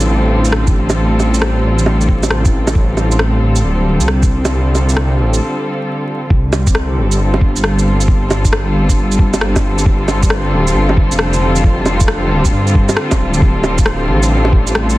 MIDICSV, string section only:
0, 0, Header, 1, 2, 480
1, 0, Start_track
1, 0, Key_signature, -1, "minor"
1, 0, Tempo, 444444
1, 1051, Time_signature, 4, 2, 24, 8
1, 16178, End_track
2, 0, Start_track
2, 0, Title_t, "String section"
2, 0, Program_c, 0, 48
2, 0, Note_on_c, 0, 50, 72
2, 0, Note_on_c, 0, 55, 64
2, 0, Note_on_c, 0, 60, 70
2, 0, Note_on_c, 0, 65, 69
2, 0, Note_on_c, 0, 69, 75
2, 6802, Note_off_c, 0, 69, 0
2, 6803, Note_off_c, 0, 50, 0
2, 6807, Note_off_c, 0, 55, 0
2, 6808, Note_off_c, 0, 60, 0
2, 6811, Note_off_c, 0, 65, 0
2, 6816, Note_on_c, 0, 50, 85
2, 6963, Note_on_c, 0, 55, 86
2, 7060, Note_on_c, 0, 60, 87
2, 7245, Note_on_c, 0, 69, 74
2, 7837, Note_on_c, 0, 65, 89
2, 16178, Note_off_c, 0, 50, 0
2, 16178, Note_off_c, 0, 55, 0
2, 16178, Note_off_c, 0, 60, 0
2, 16178, Note_off_c, 0, 65, 0
2, 16178, Note_off_c, 0, 69, 0
2, 16178, End_track
0, 0, End_of_file